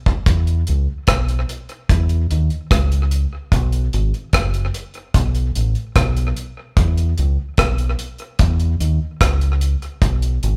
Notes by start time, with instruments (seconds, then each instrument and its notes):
0.06 kick
0.26 fingered electric bass E2, kick, closed hi-hat
0.47 closed hi-hat
0.67 fingered electric bass C#2, closed hi-hat
1.07 fingered electric bass B1, kick, cross-stick, closed hi-hat
1.28 closed hi-hat
1.49 closed hi-hat
1.69 closed hi-hat
1.89 fingered electric bass E2, kick, closed hi-hat
2.09 closed hi-hat
2.31 fingered electric bass D#2, closed hi-hat
2.50 closed hi-hat
2.71 fingered electric bass C#2, kick, cross-stick, closed hi-hat
2.92 closed hi-hat
3.11 closed hi-hat
3.52 fingered electric bass B1, kick, closed hi-hat
3.72 closed hi-hat
3.93 fingered electric bass G#1, closed hi-hat
4.14 closed hi-hat
4.33 fingered electric bass F#1, kick, cross-stick, closed hi-hat
4.54 closed hi-hat
4.74 closed hi-hat
4.94 closed hi-hat
5.14 fingered electric bass B1, kick, closed hi-hat
5.35 closed hi-hat
5.55 fingered electric bass A1, closed hi-hat
5.75 closed hi-hat
5.96 fingered electric bass B1, kick, cross-stick, closed hi-hat
6.17 closed hi-hat
6.37 closed hi-hat
6.77 fingered electric bass E2, kick, closed hi-hat
6.98 closed hi-hat
7.18 fingered electric bass C#2, closed hi-hat
7.58 fingered electric bass B1, kick, cross-stick, closed hi-hat
7.78 closed hi-hat
7.99 closed hi-hat
8.18 closed hi-hat
8.39 fingered electric bass E2, kick, closed hi-hat
8.60 closed hi-hat
8.80 fingered electric bass D#2, closed hi-hat
9.21 fingered electric bass C#2, kick, cross-stick, closed hi-hat
9.41 closed hi-hat
9.61 closed hi-hat
9.82 closed hi-hat
10.02 fingered electric bass B1, kick, closed hi-hat
10.22 closed hi-hat
10.43 fingered electric bass G#1, closed hi-hat